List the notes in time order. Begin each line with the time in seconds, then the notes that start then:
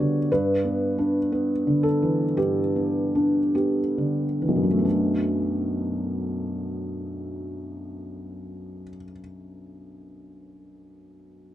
Already playing: G3 B3 F#4 C#5
0.00 D3
0.32 G2 B4
0.65 B3
0.98 D4
1.32 B3
1.67 D3
1.83 A4
2.02 E3
2.37 G2 G4
2.76 B3
3.15 D4
3.55 B3 G4
3.98 D3
4.42 E3
4.48 B1
4.56 F#2
4.63 F#3
4.71 A3
4.79 B3
4.85 D4